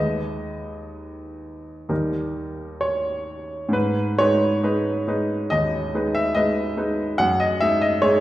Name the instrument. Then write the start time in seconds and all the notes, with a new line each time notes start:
grand piano
Already playing: D#2 G#3 D#4 B4 D#5
1.89 D#2 G3 D#4 A#4
2.81 C#5
3.69 G#2
3.73 B4
4.18 G#3 D#4 B4 C#5
4.63 G#3 D#4 B4
5.07 G#3 D#4 B4
5.50 D#2 D#5
5.94 G#3 D#4 B4
6.15 E5
6.35 G#3 D#4 B4 D#5
6.77 G#3 D#4 B4
7.18 F#2 F#5
7.40 D#5
7.61 G#3 D#4 G#4 E5
7.82 D#5
8.02 G#3 D#4 G#4 C#5